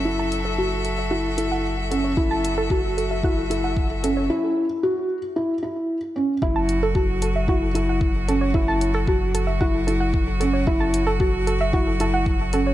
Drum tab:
HH |-x-x-x-x|-x-x-x-x|--------|-x-x-x-x|
BD |--------|o-o-o-o-|--------|o-o-o-o-|

HH |-x-x-x-x|-x-x-x-x|
BD |o-o-o-o-|o-o-o-o-|